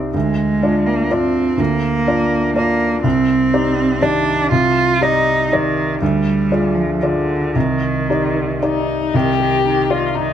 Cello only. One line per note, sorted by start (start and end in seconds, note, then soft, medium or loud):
0.15 0.88 G#3 medium
0.86 1.13 A#3 soft
1.12 1.62 C4 medium
1.60 2.55 A#3 medium
2.56 3.02 A#3 medium
3.03 4.04 C4 medium
4.02 4.51 D4 medium
4.51 5.04 F4 medium
5.03 5.54 D#4 medium
5.52 6.01 D#3 medium
6.02 6.76 G3 medium
6.74 7.04 F3 medium
7.03 7.56 D3 medium
7.55 8.88 D#3 soft
9.15 9.39 D#3 soft
9.40 9.64 D#3 soft
9.66 9.90 D#3 soft
9.92 10.16 D#3 soft
10.17 10.33 D#3 soft